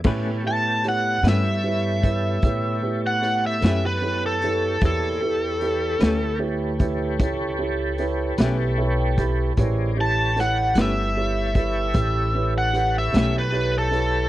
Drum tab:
CC |x-----------|------------|------------|
HH |--xx-xx-xx-x|x-xx-xx-xx-x|x-xx-xx-xx-x|
SD |---o-----o--|---o-----o--|--oo-----o--|
BD |o----oo-----|o----oo----o|o----oo-----|